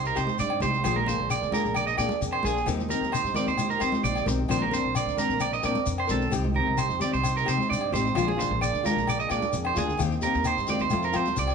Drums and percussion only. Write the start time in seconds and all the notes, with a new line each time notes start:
0.05 shekere
0.16 low agogo, shekere
0.27 high conga, shekere
0.39 shekere
0.50 low agogo
0.60 high conga, low conga, shekere
0.74 shekere
0.83 low conga, low agogo, shekere
0.95 high conga
1.06 low conga, shekere
1.30 low agogo, shekere
1.43 shekere
1.52 high conga, low conga, shekere
1.65 shekere
1.75 low agogo, shekere
1.88 shekere
1.98 low agogo, shekere
2.09 high conga, shekere
2.22 shekere
2.32 low agogo
2.43 high conga, shekere
2.57 shekere
2.66 low conga, low agogo, shekere
2.77 high conga, shekere
2.89 low conga, shekere
3.04 shekere
3.12 low agogo, shekere
3.26 shekere
3.35 high conga, low conga, shekere
3.47 shekere
3.58 high conga, low agogo, shekere
3.70 shekere
3.80 low agogo, shekere
3.92 high conga, shekere
4.05 shekere
4.15 low agogo, shekere
4.26 high conga, low conga, shekere
4.48 low conga, low agogo, shekere
4.60 high conga
4.71 low conga, shekere
4.95 low agogo, shekere
5.09 shekere
5.18 high conga, low conga, shekere
5.30 shekere
5.40 low agogo, shekere
5.53 shekere
5.63 low agogo, shekere
5.75 high conga, shekere
5.86 shekere
5.98 low agogo
6.09 high conga, low conga, shekere
6.21 shekere
6.32 low conga, low agogo, shekere
6.44 high conga
6.55 low conga
6.78 low agogo, shekere
6.90 shekere
7.01 high conga, low conga, shekere
7.13 shekere
7.23 low agogo, shekere
7.37 shekere
7.46 low agogo, shekere
7.58 high conga, shekere
7.73 shekere
7.81 low agogo
7.94 high conga, low conga, shekere
8.07 shekere
8.15 low conga, low agogo, shekere
8.28 high conga
8.40 low conga, shekere
8.61 low agogo, shekere
8.75 shekere
8.86 high conga, low conga, shekere
8.98 shekere
9.07 low agogo, shekere
9.20 shekere
9.30 low agogo, shekere
9.42 high conga, shekere
9.53 shekere
9.65 low agogo
9.76 low conga, shekere
9.90 shekere
9.99 low agogo, shekere
10.11 shekere
10.22 low conga, shekere
10.34 shekere
10.44 low agogo, shekere
10.57 shekere
10.67 high conga, low conga, shekere
10.79 shekere
10.90 high conga, low agogo, shekere
11.03 shekere
11.13 low agogo, shekere
11.25 high conga, shekere
11.37 shekere
11.48 low agogo, shekere